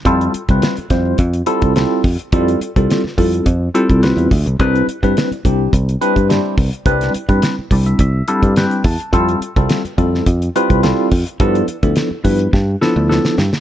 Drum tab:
HH |xxxxxxx-xxxxx-ox|xxxxx-oxx-xxxxox|xxxxxxx-xxxxx-ox|xxxxx-oxx-xxxxox|
SD |----o-o-----o---|----oo------o---|----o-------o---|-o--o-------o---|
BD |o--o--o-o--o--o-|o--o--o-o--o--o-|o--o--o-o--o--o-|o--o--o-o--o--o-|

HH |xxxxxxx-xxxxx-ox|xxxxx-ox--------|
SD |----o--o----o---|----o---o-o-oooo|
BD |o--o--o-o--o--o-|o--o--o-o-------|